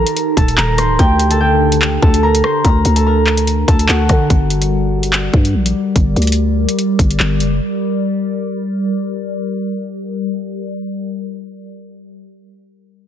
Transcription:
0.00 0.96 D#3 medium
0.00 0.96 D#4 medium
0.00 0.45 G4 medium
0.00 0.96 G4 medium
0.00 0.43 A#4 medium
0.00 0.96 A#4 medium
0.00 0.79 C5 medium
0.00 0.43 A#5 medium
0.00 0.44 C6 medium
0.07 closed hi-hat medium
0.17 closed hi-hat medium
0.37 0.57 D#1 loud
0.37 0.64 A4 medium
0.37 0.64 A5 medium
0.37 kick loud
0.37 closed hi-hat medium
0.48 closed hi-hat medium
0.58 0.80 D#1 loud
0.58 1.37 A#4 medium
0.58 1.37 A#5 loud
0.58 clap loud
0.78 0.98 D1 loud
0.78 2.44 C5 medium
0.78 2.09 C6 medium
0.78 cross-stick medium
0.78 closed hi-hat medium
0.99 1.99 D2 loud
0.99 4.27 D3 medium
0.99 4.27 D4 medium
0.99 1.41 G4 medium
0.99 1.40 G5 loud
0.99 kick loud
0.99 closed hi-hat medium
1.19 closed hi-hat medium
1.31 2.03 A4 medium
1.31 2.02 A5 medium
1.31 closed hi-hat medium
1.40 3.77 G4 medium
1.40 2.96 G5 medium
1.72 closed hi-hat medium
1.82 clap loud
2.02 2.42 D2 loud
2.02 2.29 A4 medium
2.02 2.29 A5 medium
2.02 kick loud
2.14 closed hi-hat medium
2.23 2.65 A#4 medium
2.23 2.64 A#5 medium
2.35 closed hi-hat medium
2.44 4.43 C5 medium
2.44 3.74 C6 medium
2.44 cross-stick medium
2.64 2.84 D2 loud
2.64 3.02 A#4 medium
2.64 3.02 A#5 loud
2.64 kick loud
2.64 closed hi-hat medium
2.85 3.65 D2 loud
2.85 closed hi-hat medium
2.96 3.12 A4 medium
2.96 3.12 A5 medium
2.96 closed hi-hat medium
3.06 3.74 A#4 medium
3.06 3.74 A#5 medium
3.27 clap medium
3.37 closed hi-hat medium
3.47 closed hi-hat medium
3.68 3.88 D2 loud
3.68 5.89 A4 medium
3.68 5.13 A5 medium
3.68 kick loud
3.68 closed hi-hat medium
3.79 closed hi-hat medium
3.89 4.09 D2 loud
3.89 6.34 F#4 medium
3.89 5.50 F#5 medium
3.89 clap loud
4.09 4.29 D3 loud
4.09 kick loud
4.09 cross-stick medium
4.09 closed hi-hat medium
4.30 5.30 G1 loud
4.30 10.88 G3 medium
4.30 10.88 G4 medium
4.30 10.88 A#4 medium
4.30 10.88 D5 medium
4.30 kick loud
4.30 closed hi-hat medium
4.50 closed hi-hat medium
4.62 closed hi-hat medium
5.03 closed hi-hat medium
5.13 clap loud
5.34 5.56 G2 loud
5.34 kick loud
5.45 closed hi-hat medium
5.54 5.74 A#1 loud
5.66 closed hi-hat medium
5.96 6.16 G1 loud
5.96 kick loud
5.96 closed hi-hat medium
6.16 6.67 D2 loud
6.16 closed hi-hat soft
6.22 closed hi-hat medium
6.27 closed hi-hat medium
6.32 closed hi-hat medium
6.69 closed hi-hat medium
6.79 closed hi-hat medium
6.99 7.19 G1 loud
6.99 kick loud
6.99 closed hi-hat medium
7.11 closed hi-hat medium
7.20 7.42 G1 loud
7.20 clap loud
7.40 7.60 F#1 loud
7.40 closed hi-hat medium

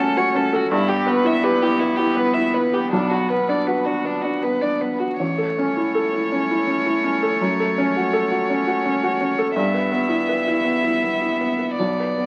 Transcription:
0.00 0.67 F#2 medium
0.00 0.66 A3 medium
0.00 0.35 C#4 medium
0.00 0.17 F#4 medium
0.00 0.18 A4 medium
0.00 0.53 A4 medium
0.17 0.45 F#4 medium
0.17 0.38 C#5 medium
0.35 0.63 C#4 medium
0.35 0.56 A4 medium
0.53 0.71 F#4 medium
0.53 0.71 A4 medium
0.71 2.88 G2 medium
0.71 4.95 B3 loud
0.71 0.90 E4 medium
0.88 1.09 G4 medium
0.88 1.17 G4 medium
1.07 1.36 B3 medium
1.07 1.28 B4 medium
1.24 1.54 E4 medium
1.24 1.45 E5 medium
1.43 1.72 G4 medium
1.43 1.63 B4 medium
1.62 1.91 E4 medium
1.62 1.81 G4 medium
1.79 2.10 B3 medium
1.79 1.98 E4 medium
1.96 2.28 E4 medium
1.96 2.15 G4 medium
2.14 2.46 B3 medium
2.14 2.35 B4 medium
2.33 2.65 E4 medium
2.33 2.55 E5 medium
2.54 2.84 B3 medium
2.54 2.75 B4 medium
2.73 2.92 G4 soft
2.73 2.91 G4 medium
2.91 5.16 B1 medium
2.91 3.11 D4 medium
3.09 3.30 F#4 medium
3.09 3.41 F#4 medium
3.29 3.60 B3 soft
3.29 3.51 B4 medium
3.49 3.79 D4 soft
3.49 3.68 D5 medium
3.67 3.98 F#4 medium
3.67 3.87 B4 medium
3.85 4.16 D4 soft
3.85 4.07 F#4 medium
4.05 4.35 B3 soft
4.05 4.24 D4 medium
4.22 4.55 D4 soft
4.22 4.44 F#4 medium
4.43 4.74 B3 soft
4.43 4.63 B4 medium
4.61 4.93 D4 soft
4.61 4.83 D5 soft
4.81 5.12 B3 soft
4.81 5.01 B4 soft
4.99 5.19 F#4 soft
5.19 7.35 A1 medium
5.19 9.51 A3 medium
5.19 9.51 C#5 medium
5.38 5.68 A4 soft
5.58 5.87 C#4 medium
5.77 6.05 E4 soft
5.95 6.24 A4 medium
6.14 6.42 E4 soft
6.32 6.60 C#4 medium
6.51 6.79 E4 soft
6.67 6.96 C#4 soft
6.86 7.15 E4 soft
7.04 7.33 C#4 medium
7.23 7.40 A4 medium
7.41 9.52 F#2 medium
7.60 7.88 A4 medium
7.78 8.06 C#4 medium
7.96 8.24 F#4 medium
8.13 8.41 A4 medium
8.31 8.59 F#4 medium
8.50 8.77 C#4 medium
8.67 8.95 F#4 medium
8.85 9.13 C#4 medium
9.03 9.31 F#4 medium
9.21 9.49 C#4 medium
9.38 9.56 A4 medium
9.54 11.74 G2 medium
9.54 12.26 B3 medium
9.54 11.73 E5 medium
9.74 10.02 B4 medium
9.92 10.20 B3 medium
10.09 10.38 E4 soft
10.29 10.57 B4 medium
10.47 10.76 E4 soft
10.64 10.93 B3 soft
10.83 11.13 E4 soft
11.03 11.32 B3 soft
11.21 11.51 E4 soft
11.41 11.71 B3 soft
11.59 11.78 B4 soft
11.78 12.26 B1 soft
11.78 12.26 D5 soft
12.00 12.26 B4 soft
12.18 12.26 B3 soft

